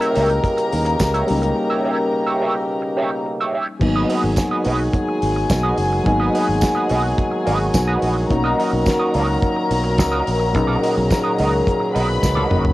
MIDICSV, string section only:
0, 0, Header, 1, 2, 480
1, 0, Start_track
1, 0, Key_signature, 5, "minor"
1, 0, Tempo, 561798
1, 1336, Time_signature, 4, 2, 24, 8
1, 10879, End_track
2, 0, Start_track
2, 0, Title_t, "String section"
2, 0, Program_c, 0, 48
2, 0, Note_on_c, 0, 70, 103
2, 0, Note_on_c, 0, 82, 104
2, 2744, Note_off_c, 0, 70, 0
2, 2744, Note_off_c, 0, 82, 0
2, 3249, Note_on_c, 0, 68, 81
2, 3250, Note_on_c, 0, 80, 94
2, 7058, Note_off_c, 0, 68, 0
2, 7058, Note_off_c, 0, 80, 0
2, 7093, Note_on_c, 0, 70, 81
2, 7098, Note_on_c, 0, 82, 89
2, 10177, Note_off_c, 0, 70, 0
2, 10179, Note_off_c, 0, 82, 0
2, 10212, Note_on_c, 0, 71, 81
2, 10216, Note_on_c, 0, 83, 99
2, 10879, Note_off_c, 0, 71, 0
2, 10879, Note_off_c, 0, 83, 0
2, 10879, End_track
0, 0, End_of_file